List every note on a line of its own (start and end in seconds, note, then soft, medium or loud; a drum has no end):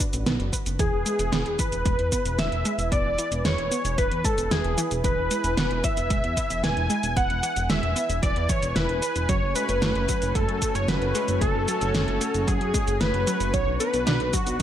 0.00 0.15 D4 medium
0.00 0.76 D4 medium
0.00 0.75 F#4 medium
0.00 0.22 B4 loud
0.00 9.25 B4 medium
0.00 kick loud
0.00 closed hi-hat medium
0.00 cabasa medium
0.13 0.25 A1 medium
0.13 closed hi-hat medium
0.13 cabasa soft
0.26 0.38 B1 loud
0.26 0.42 B3 loud
0.26 snare loud
0.26 closed hi-hat medium
0.26 cabasa soft
0.40 0.51 F#1 medium
0.40 closed hi-hat soft
0.53 0.68 B4 medium
0.53 kick medium
0.53 closed hi-hat medium
0.53 cabasa medium
0.66 0.78 F#1 medium
0.66 closed hi-hat medium
0.66 cabasa soft
0.79 0.91 E1 loud
0.79 1.03 E3 medium
0.79 9.25 E4 medium
0.79 1.55 G#4 loud
0.79 1.61 G#4 loud
0.79 13.50 G#5 medium
0.79 kick loud
0.79 closed hi-hat medium
0.79 cabasa soft
0.93 1.05 E1 medium
1.06 1.21 G#3 medium
1.06 closed hi-hat medium
1.06 cabasa medium
1.19 1.31 E1 medium
1.19 closed hi-hat medium
1.19 cabasa soft
1.32 1.44 E1 loud
1.32 1.56 B3 loud
1.32 snare loud
1.32 closed hi-hat medium
1.32 cabasa soft
1.46 1.58 E1 medium
1.46 closed hi-hat soft
1.59 1.75 E3 medium
1.59 2.41 B4 loud
1.59 2.35 B4 loud
1.59 kick loud
1.59 closed hi-hat medium
1.59 cabasa medium
1.72 1.84 E1 medium
1.72 closed hi-hat medium
1.72 cabasa soft
1.85 1.97 E1 loud
1.85 1.95 G#3 medium
1.85 kick loud
1.85 closed hi-hat medium
1.85 cabasa soft
1.99 2.11 E2 medium
1.99 closed hi-hat soft
2.12 2.35 B3 medium
2.12 kick medium
2.12 closed hi-hat medium
2.12 cabasa medium
2.25 2.37 E1 medium
2.25 closed hi-hat medium
2.25 cabasa soft
2.39 2.50 E1 loud
2.39 2.62 E3 medium
2.39 2.88 E5 loud
2.39 2.92 E5 loud
2.39 snare loud
2.39 closed hi-hat medium
2.39 cabasa soft
2.52 2.64 E1 medium
2.52 closed hi-hat soft
2.65 2.81 G#3 loud
2.65 closed hi-hat medium
2.65 cabasa medium
2.78 2.90 E1 medium
2.78 closed hi-hat medium
2.78 cabasa soft
2.92 3.04 E1 loud
2.92 3.15 B3 medium
2.92 3.41 D5 loud
2.92 kick loud
2.92 closed hi-hat medium
2.92 cabasa soft
3.05 3.17 E1 medium
3.18 3.34 E3 medium
3.18 closed hi-hat medium
3.18 cabasa medium
3.32 3.43 E1 medium
3.32 closed hi-hat medium
3.32 cabasa soft
3.45 3.57 E1 loud
3.45 3.68 G#3 medium
3.45 4.00 C#5 loud
3.45 3.95 C#5 loud
3.45 snare loud
3.45 closed hi-hat medium
3.45 cabasa soft
3.58 3.70 E1 medium
3.58 closed hi-hat soft
3.71 3.81 B3 medium
3.71 closed hi-hat medium
3.71 cabasa medium
3.85 3.97 E1 medium
3.85 closed hi-hat medium
3.85 cabasa soft
3.98 4.10 E1 loud
3.98 4.07 E3 medium
3.98 4.23 B4 loud
3.98 4.26 B4 loud
3.98 kick loud
3.98 closed hi-hat medium
3.98 cabasa soft
4.11 4.23 E2 medium
4.11 closed hi-hat soft
4.24 4.34 G#3 medium
4.24 4.49 A4 loud
4.24 4.53 A4 loud
4.24 kick loud
4.24 closed hi-hat medium
4.24 cabasa medium
4.38 4.50 E1 medium
4.38 closed hi-hat medium
4.38 cabasa soft
4.51 4.63 E1 loud
4.51 4.67 B3 medium
4.51 4.91 G#4 loud
4.51 4.88 G#4 loud
4.51 snare loud
4.51 closed hi-hat medium
4.51 cabasa soft
4.64 4.76 E1 medium
4.64 closed hi-hat soft
4.78 4.87 E3 loud
4.78 closed hi-hat medium
4.78 cabasa medium
4.91 5.03 E1 medium
4.91 closed hi-hat medium
4.91 cabasa soft
5.04 5.16 E1 loud
5.04 5.28 E3 medium
5.04 5.86 B4 loud
5.04 5.80 B4 loud
5.04 kick loud
5.04 closed hi-hat medium
5.04 cabasa soft
5.18 5.29 E1 medium
5.31 5.46 G#3 medium
5.31 closed hi-hat medium
5.31 cabasa medium
5.44 5.56 E1 medium
5.44 closed hi-hat medium
5.44 cabasa soft
5.57 5.69 E1 loud
5.57 5.81 B3 loud
5.57 snare loud
5.57 closed hi-hat medium
5.57 cabasa soft
5.71 5.82 E1 medium
5.71 closed hi-hat soft
5.84 6.00 E3 medium
5.84 6.60 E5 loud
5.84 6.65 E5 loud
5.84 kick loud
5.84 closed hi-hat medium
5.84 cabasa medium
5.97 6.09 E1 medium
5.97 closed hi-hat medium
5.97 cabasa soft
6.10 6.22 E1 loud
6.10 6.20 G#3 medium
6.10 kick loud
6.10 closed hi-hat medium
6.10 cabasa soft
6.24 6.36 E2 medium
6.24 closed hi-hat soft
6.37 6.60 B3 medium
6.37 kick medium
6.37 closed hi-hat medium
6.37 cabasa medium
6.50 6.62 E1 medium
6.50 closed hi-hat medium
6.50 cabasa soft
6.63 6.75 E1 loud
6.63 6.87 E3 medium
6.63 7.18 G#5 loud
6.63 7.13 G#5 loud
6.63 snare loud
6.63 closed hi-hat medium
6.63 cabasa soft
6.77 6.89 E1 medium
6.77 closed hi-hat soft
6.90 7.05 G#3 loud
6.90 closed hi-hat medium
6.90 cabasa medium
7.03 7.15 E1 medium
7.03 closed hi-hat medium
7.03 cabasa soft
7.16 7.28 E1 loud
7.16 7.40 B3 medium
7.16 7.69 F#5 loud
7.16 7.66 F#5 loud
7.16 kick loud
7.16 closed hi-hat medium
7.16 cabasa soft
7.30 7.42 E1 medium
7.30 closed hi-hat soft
7.43 7.59 E3 medium
7.43 closed hi-hat medium
7.43 cabasa medium
7.56 7.68 E1 medium
7.56 closed hi-hat medium
7.56 cabasa soft
7.69 7.82 E1 loud
7.69 7.93 G#3 medium
7.69 8.19 E5 loud
7.69 snare loud
7.69 closed hi-hat medium
7.69 cabasa soft
7.83 7.95 E1 medium
7.83 closed hi-hat soft
7.96 8.05 B3 medium
7.96 closed hi-hat medium
7.96 cabasa medium
8.10 8.21 E1 medium
8.10 closed hi-hat medium
8.10 cabasa soft
8.22 8.35 E1 loud
8.22 8.32 E3 medium
8.22 8.47 D5 loud
8.22 8.51 D5 loud
8.22 kick loud
8.22 closed hi-hat medium
8.22 cabasa soft
8.36 8.48 E2 medium
8.36 closed hi-hat soft
8.49 8.65 E3 loud
8.49 8.74 C#5 loud
8.49 8.77 C#5 loud
8.49 kick loud
8.49 closed hi-hat medium
8.49 cabasa medium
8.63 8.75 E1 medium
8.63 closed hi-hat medium
8.63 cabasa soft
8.75 8.88 E1 loud
8.75 8.91 E4 loud
8.75 9.30 B4 loud
8.75 9.25 B4 medium
8.75 snare loud
8.75 closed hi-hat medium
8.75 cabasa soft
8.89 9.01 E1 medium
8.89 closed hi-hat soft
9.02 9.18 B4 medium
9.02 closed hi-hat medium
9.02 cabasa medium
9.16 9.28 E1 medium
9.16 closed hi-hat medium
9.16 cabasa soft
9.29 9.41 F#1 loud
9.29 9.52 F#3 medium
9.29 13.50 A3 medium
9.29 13.50 C#4 medium
9.29 14.62 F#4 medium
9.29 9.54 C#5 loud
9.29 9.55 C#5 loud
9.29 13.50 C#5 medium
9.29 kick loud
9.29 closed hi-hat medium
9.29 cabasa soft
9.43 9.54 F#1 medium
9.55 9.71 G#3 medium
9.55 10.37 B4 loud
9.55 10.31 B4 loud
9.55 closed hi-hat medium
9.55 cabasa medium
9.69 9.81 F#1 medium
9.69 closed hi-hat medium
9.69 cabasa soft
9.82 9.94 F#1 loud
9.82 10.05 A3 loud
9.82 snare loud
9.82 closed hi-hat medium
9.82 cabasa soft
9.95 10.07 F#1 medium
9.95 closed hi-hat soft
10.09 10.24 F#3 medium
10.09 kick loud
10.09 closed hi-hat medium
10.09 cabasa medium
10.22 10.34 F#1 medium
10.22 closed hi-hat medium
10.22 cabasa soft
10.35 10.47 F#1 loud
10.35 10.45 G#3 medium
10.35 10.77 A4 loud
10.35 10.72 A4 medium
10.35 kick loud
10.35 closed hi-hat medium
10.35 cabasa soft
10.49 10.60 F#2 medium
10.49 closed hi-hat soft
10.62 10.85 A3 medium
10.62 kick medium
10.62 closed hi-hat medium
10.62 cabasa medium
10.75 10.87 F#1 medium
10.75 10.90 C#5 loud
10.75 10.88 C#5 medium
10.75 closed hi-hat medium
10.75 cabasa soft
10.88 11.00 F#1 loud
10.88 11.12 F#3 medium
10.88 11.41 B4 loud
10.88 11.38 B4 loud
10.88 snare loud
10.88 closed hi-hat medium
10.88 cabasa soft
11.02 11.13 F#1 medium
11.02 closed hi-hat soft
11.15 11.30 G#3 loud
11.15 closed hi-hat medium
11.15 cabasa medium
11.28 11.40 F#1 medium
11.28 closed hi-hat medium
11.28 cabasa soft
11.41 11.53 F#1 loud
11.41 11.65 A3 medium
11.41 12.43 A4 loud
11.41 12.49 A4 loud
11.41 kick loud
11.41 closed hi-hat medium
11.41 cabasa soft
11.55 11.66 F#1 medium
11.68 11.83 F#3 medium
11.68 closed hi-hat medium
11.68 cabasa medium
11.81 11.93 F#1 medium
11.81 closed hi-hat medium
11.81 cabasa soft
11.94 12.06 F#1 loud
11.94 12.18 G#3 medium
11.94 snare loud
11.94 closed hi-hat medium
11.94 cabasa soft
12.08 12.20 F#1 medium
12.08 closed hi-hat soft
12.21 12.30 A3 medium
12.21 closed hi-hat medium
12.21 cabasa medium
12.34 12.46 F#1 medium
12.34 closed hi-hat medium
12.34 cabasa soft
12.47 12.59 F#1 loud
12.47 12.57 F#3 medium
12.47 13.02 G#4 loud
12.47 12.97 G#4 loud
12.47 kick loud
12.47 closed hi-hat medium
12.47 cabasa soft
12.61 12.73 F#2 medium
12.61 closed hi-hat soft
12.74 12.83 G#3 medium
12.74 kick loud
12.74 closed hi-hat medium
12.74 cabasa medium
12.88 12.99 F#1 medium
12.88 closed hi-hat soft
12.88 cabasa soft
13.00 13.13 F#1 loud
13.00 13.16 A3 medium
13.00 13.55 B4 loud
13.00 13.50 B4 loud
13.00 snare loud
13.00 closed hi-hat medium
13.00 cabasa soft
13.14 13.26 F#1 medium
13.14 closed hi-hat soft
13.27 13.37 F#3 loud
13.27 closed hi-hat medium
13.27 cabasa medium
13.40 13.52 F#1 medium
13.40 closed hi-hat medium
13.40 cabasa soft
13.53 13.66 B1 loud
13.53 13.77 F#3 medium
13.53 14.62 D4 medium
13.53 14.62 B4 medium
13.53 13.79 C#5 loud
13.53 kick loud
13.53 closed hi-hat medium
13.53 cabasa soft
13.67 13.79 B1 medium
13.80 13.96 B3 medium
13.80 14.35 B4 loud
13.80 14.30 B4 loud
13.80 closed hi-hat medium
13.80 cabasa medium
13.94 14.05 B1 medium
13.94 closed hi-hat medium
13.94 cabasa soft
14.07 14.19 B1 loud
14.07 14.30 D4 loud
14.07 snare loud
14.07 closed hi-hat medium
14.07 cabasa soft
14.20 14.32 B1 medium
14.20 closed hi-hat soft
14.33 14.49 F#3 medium
14.33 14.62 F#4 medium
14.33 14.62 F#4 loud
14.33 kick loud
14.33 closed hi-hat medium
14.33 cabasa medium
14.47 14.58 B1 medium
14.47 closed hi-hat medium
14.47 cabasa soft